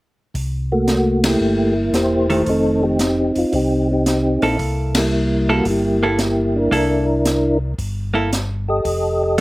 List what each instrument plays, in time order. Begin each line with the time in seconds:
0.34 tonewheel organ C2, kick, open hi-hat
0.72 tonewheel organ A3 A#3 F#4
0.88 snare, closed hi-hat
1.24 tonewheel organ A#3 E4 G4, snare, ride
1.41 tonewheel organ G1
1.93 tonewheel organ E1 E4 G4 C5, snare, closed hi-hat
2.30 hollow-body jazz guitar D#3 A3, open hi-hat
2.46 tonewheel organ F1 C4 D#4 A4, kick, open hi-hat
2.83 tonewheel organ C4 D#4 G4
2.99 snare, closed hi-hat
3.35 tonewheel organ F1 F4, open hi-hat
3.53 tonewheel organ C2 C4 D#4 G4, kick, open hi-hat
3.91 tonewheel organ C4 D#4 G4
4.06 snare, closed hi-hat
4.42 tonewheel organ A#1, hollow-body jazz guitar A#3 E4 A4, open hi-hat
4.59 tonewheel organ C2, kick, open hi-hat
4.95 tonewheel organ G3 A#3 E4, snare, ride
5.49 hollow-body jazz guitar A#3 E4 A4, tonewheel organ F#4
5.65 tonewheel organ G1 E4, kick, open hi-hat
5.69 tonewheel organ A#3 G4
6.03 hollow-body jazz guitar A#3 E4 A4
6.19 snare, closed hi-hat
6.56 tonewheel organ D4 E4 A#4
6.71 tonewheel organ C2, hollow-body jazz guitar A#3 E4 A4, kick, open hi-hat
7.25 snare, closed hi-hat
7.78 tonewheel organ G1, kick, open hi-hat
8.14 hollow-body jazz guitar A#3 E4 A4
8.33 snare, closed hi-hat
8.68 tonewheel organ G4 A4 D#5
8.85 tonewheel organ F1, kick, open hi-hat
9.23 tonewheel organ D#5